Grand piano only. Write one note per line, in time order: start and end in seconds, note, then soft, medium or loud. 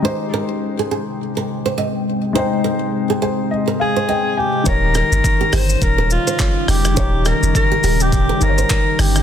0.02 2.30 G#3 medium
0.02 2.31 D#4 medium
0.02 2.32 G4 medium
0.07 2.33 C5 medium
2.33 4.61 G#3 medium
2.33 4.62 D#4 medium
2.33 4.07 G5 medium
2.38 3.21 C5 medium
3.22 3.49 C5 medium
3.51 3.78 D#5 medium
3.80 4.07 F5 medium
4.09 4.35 G5 medium
4.37 4.64 G#5 medium
4.64 6.92 D#3 medium
4.64 6.93 D#4 medium
4.64 6.93 G4 medium
4.69 6.94 C#5 medium
6.95 8.37 D#3 medium
6.95 8.38 D#4 medium
6.95 8.39 G4 medium
7.00 8.40 C#5 medium
8.40 9.23 D#3 medium
8.40 9.23 D#4 soft
8.40 9.23 G4 soft
8.40 8.50 C5 soft
8.49 9.23 C#5 medium